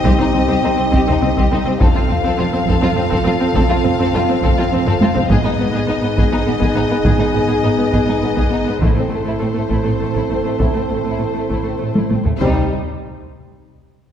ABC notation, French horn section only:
X:1
M:6/8
L:1/8
Q:3/8=68
K:Cdor
V:1 name="French horn section"
[CE]6 | [CF]6- | [CF]6 | [_CE]6- |
[_CE]6 | [C=E]6- | [C=E]4- [CE] z | [CE] z4 z |]